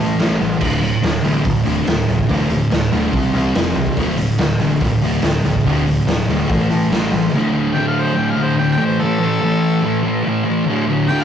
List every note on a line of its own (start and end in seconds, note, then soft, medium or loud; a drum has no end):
0.00 0.14 A2 medium
0.00 0.18 A2 medium
0.00 0.19 E3 medium
0.00 0.20 A3 loud
0.19 0.36 A1 medium
0.19 0.39 A2 medium
0.19 0.40 E3 medium
0.19 0.40 A3 loud
0.19 snare loud
0.19 open hi-hat medium
0.41 0.57 A1 medium
0.41 0.59 A2 medium
0.41 0.60 E3 medium
0.41 open hi-hat medium
0.60 0.93 D1 medium
0.60 0.80 D2 loud
0.60 0.80 A2 loud
0.60 0.82 D3 medium
0.60 kick loud
0.60 crash loud
0.81 1.01 D2 medium
0.81 1.01 A2 medium
0.81 open hi-hat medium
1.02 1.19 D1 loud
1.02 1.21 D2 medium
1.02 1.22 A2 medium
1.02 snare medium
1.02 open hi-hat medium
1.23 1.41 A1 medium
1.23 1.43 D2 medium
1.23 1.43 A2 medium
1.23 1.45 D3 loud
1.23 open hi-hat medium
1.44 1.61 D1 loud
1.44 1.63 D2 medium
1.44 1.64 A2 medium
1.44 kick loud
1.44 open hi-hat medium
1.64 1.82 D1 medium
1.64 1.85 D2 loud
1.64 1.85 A2 loud
1.64 1.86 D3 loud
1.64 open hi-hat medium
1.86 2.03 D1 medium
1.86 2.06 D2 medium
1.86 2.06 A2 medium
1.86 snare loud
1.86 open hi-hat medium
2.07 2.24 D1 medium
2.07 2.27 D2 medium
2.07 2.27 A2 medium
2.07 open hi-hat medium
2.19 kick medium
2.29 2.62 D1 loud
2.29 2.49 D2 medium
2.29 2.50 A2 loud
2.29 2.50 D3 medium
2.29 kick loud
2.29 open hi-hat medium
2.50 2.70 D2 medium
2.50 2.70 A2 medium
2.50 open hi-hat medium
2.71 2.87 D1 medium
2.71 2.90 D2 medium
2.71 2.91 A2 medium
2.71 snare loud
2.71 open hi-hat medium
2.91 3.08 D1 medium
2.91 3.12 D2 medium
2.91 3.12 A2 medium
2.91 3.12 D3 medium
2.91 open hi-hat medium
3.12 3.29 C2 medium
3.12 3.33 C3 medium
3.12 3.33 G3 medium
3.12 3.33 C4 medium
3.12 kick loud
3.12 open hi-hat medium
3.34 3.50 C2 medium
3.34 3.54 C3 medium
3.34 3.54 G3 loud
3.34 3.55 C4 loud
3.34 open hi-hat medium
3.55 3.71 F1 medium
3.55 3.75 F2 medium
3.55 3.75 C3 medium
3.55 3.76 F3 loud
3.55 snare loud
3.55 open hi-hat medium
3.75 3.92 C2 medium
3.75 3.95 F2 medium
3.75 3.95 C3 medium
3.75 open hi-hat medium
3.87 kick medium
3.96 4.29 D1 medium
3.96 4.16 D2 loud
3.96 4.17 A2 loud
3.96 4.18 D3 loud
3.96 kick loud
3.96 open hi-hat medium
4.17 4.37 D2 medium
4.17 4.37 A2 medium
4.17 open hi-hat medium
4.37 4.54 D1 medium
4.37 4.59 D2 medium
4.37 4.59 A2 medium
4.37 snare loud
4.37 open hi-hat medium
4.58 4.75 A1 medium
4.58 4.80 D2 loud
4.58 4.80 A2 loud
4.58 4.81 D3 medium
4.58 open hi-hat medium
4.81 4.97 D1 loud
4.81 5.01 D2 medium
4.81 5.01 A2 medium
4.81 kick loud
4.81 open hi-hat medium
5.00 5.17 D1 medium
5.00 5.22 D2 loud
5.00 5.23 A2 loud
5.00 open hi-hat medium
5.04 5.23 D3 loud
5.22 5.39 D1 medium
5.22 5.43 D2 medium
5.22 5.43 A2 medium
5.22 snare loud
5.22 open hi-hat medium
5.44 5.60 D1 medium
5.44 5.63 D2 medium
5.44 5.64 A2 medium
5.44 snare soft
5.44 open hi-hat medium
5.55 kick medium
5.65 5.97 D1 medium
5.65 5.85 D2 loud
5.65 5.86 A2 loud
5.65 5.86 D3 loud
5.65 kick loud
5.65 open hi-hat medium
5.87 6.06 D2 medium
5.87 6.06 A2 medium
5.87 open hi-hat medium
6.06 6.22 D1 medium
6.06 6.26 D2 medium
6.06 6.26 A2 medium
6.06 snare loud
6.06 open hi-hat medium
6.28 6.44 D1 medium
6.28 6.48 D2 medium
6.28 6.48 A2 medium
6.28 6.49 D3 loud
6.28 open hi-hat medium
6.49 6.65 A1 loud
6.49 6.69 A2 medium
6.49 6.69 E3 medium
6.49 6.70 A3 medium
6.49 kick loud
6.49 open hi-hat medium
6.70 6.89 A2 medium
6.70 6.86 A2 medium
6.70 6.90 E3 loud
6.70 6.91 A3 loud
6.70 open hi-hat medium
6.90 7.06 A1 medium
6.90 7.10 A2 medium
6.90 7.11 E3 medium
6.90 7.12 A3 loud
6.90 snare loud
6.90 open hi-hat medium
7.11 7.28 A1 medium
7.11 7.31 A2 medium
7.11 7.31 E3 medium
7.11 open hi-hat medium
7.32 7.72 D2 medium
7.32 7.56 A2 loud
7.36 7.51 D3 loud
7.53 7.77 D3 medium
7.57 7.75 A2 medium
7.74 8.13 D2 medium
7.74 8.16 A2 medium
7.74 7.87 G5 medium
7.78 8.18 D3 medium
7.88 8.03 F5 medium
8.02 8.19 C5 loud
8.14 8.56 D2 loud
8.14 8.39 A2 loud
8.14 8.32 G5 medium
8.19 8.34 D3 medium
8.31 8.46 F5 medium
8.35 8.60 D3 medium
8.40 8.58 A2 medium
8.44 8.58 C5 loud
8.57 8.77 D2 medium
8.57 8.79 A2 medium
8.57 8.71 G5 medium
8.61 8.77 D3 medium
8.72 8.85 G5 loud
8.78 9.00 E3 medium
8.78 9.03 A3 medium
8.82 8.98 A2 medium
8.82 9.02 C5 loud
8.99 9.39 A2 loud
8.99 9.23 E3 loud
8.99 10.22 A4 loud
9.04 9.19 A3 loud
9.19 9.44 A3 medium
9.24 9.42 E3 medium
9.41 9.81 A2 medium
9.41 9.83 E3 medium
9.45 9.85 A3 medium
9.82 10.22 A2 medium
9.82 10.07 E3 loud
9.86 10.02 A3 loud
10.03 10.27 A3 medium
10.08 10.25 E3 medium
10.23 10.65 A2 medium
10.23 10.48 E3 medium
10.28 10.43 A3 medium
10.44 10.65 A3 medium
10.50 10.68 E3 medium
10.65 11.05 D2 loud
10.65 10.90 A2 loud
10.70 10.85 D3 loud
10.86 11.10 D3 medium
10.91 11.08 A2 medium
11.07 11.24 D2 medium
11.07 11.24 A2 medium
11.07 11.24 G5 loud
11.12 11.24 D3 medium